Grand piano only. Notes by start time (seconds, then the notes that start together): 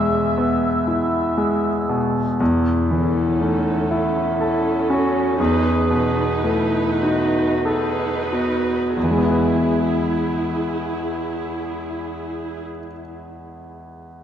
Already playing: E2 B2 G#3
0.38 B3
0.87 E4
1.38 G#3
1.89 B2
2.40 E2
2.91 E3
3.41 A3
3.91 E4
4.40 A4
4.90 C#4
5.40 E2
5.90 B2
6.44 A3
7.03 D#4
7.66 A4
8.33 B3
8.97 E2
9.04 E3
9.11 G#3
9.18 B3
9.25 E4
9.32 B4